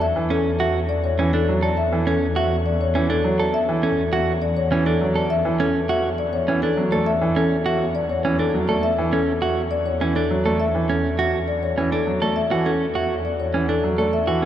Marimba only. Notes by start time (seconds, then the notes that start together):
0.02 E5
0.31 A4
0.60 E5
0.89 D5
1.04 C#5
1.33 A4
1.63 D5
1.77 E5
2.07 A4
2.37 E5
2.66 D5
2.81 C#5
3.10 A4
3.39 D5
3.54 E5
3.84 A4
4.13 E5
4.42 D5
4.57 C#5
4.86 A4
5.16 D5
5.30 E5
5.60 A4
5.89 E5
6.18 D5
6.33 C#5
6.62 A4
6.92 D5
7.06 E5
7.36 A4
7.66 E5
7.95 D5
8.10 C#5
8.39 A4
8.68 D5
8.83 E5
9.12 A4
9.42 E5
9.71 D5
9.86 C#5
10.15 A4
10.45 D5
10.60 E5
10.89 A4
11.19 E5
11.48 D5
11.63 C#5
11.92 A4
12.21 D5
12.36 E5
12.66 A4
12.95 E5
13.25 D5
13.40 C#5
13.69 A4
13.99 D5
14.13 E5